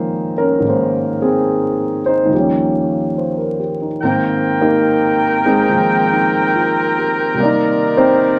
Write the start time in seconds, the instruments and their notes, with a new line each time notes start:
Already playing: grand piano G#2 D#3 F3 G#3 A#3 C4 C#4 D#4 G#4 A#4 C5
0.38 grand piano C#4 A#4
0.59 grand piano G#2 D#3
0.64 grand piano G#3 A#3
0.70 grand piano C5
1.22 grand piano C4 G#4
2.06 grand piano D#4 C5
2.25 grand piano D#2 D#3
2.31 grand piano F3 G3 G4
2.36 grand piano A#3 C#4
3.18 grand piano C5
3.38 grand piano A#4
3.60 grand piano G4
3.82 grand piano D#4
4.01 grand piano G#2 D#3 A#3 C4, saxophone section C4 A#4 G5
4.61 grand piano A#3 D#4 G4 A#4
5.45 grand piano G#3 C4 D#4 G#4
5.69 grand piano D#3 F3 G#3 A#3
6.13 grand piano D#4
6.55 grand piano F4
6.98 grand piano G4
7.34 grand piano C3 G3
7.39 saxophone section D#3 D5, grand piano A#3 D5
7.45 grand piano D#4
7.97 grand piano C4 D#4 G4 C5